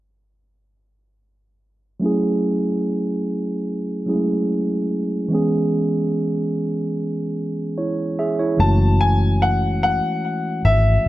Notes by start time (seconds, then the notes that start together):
2.00 F#3 A3 C#4
2.04 E4 G#4
4.06 F#3 G#3 C#4 E4 G#4
4.14 A3
5.29 E3 G#3 B3
5.33 C#4 G#4
7.78 E4 C#5
8.19 G#4 E5
8.39 E4 C#5
8.57 F#1 E3 G#3 A3 A5
8.61 C#4 F#4
9.01 G#5
9.42 F#5
9.83 F#5
10.65 G#1 E5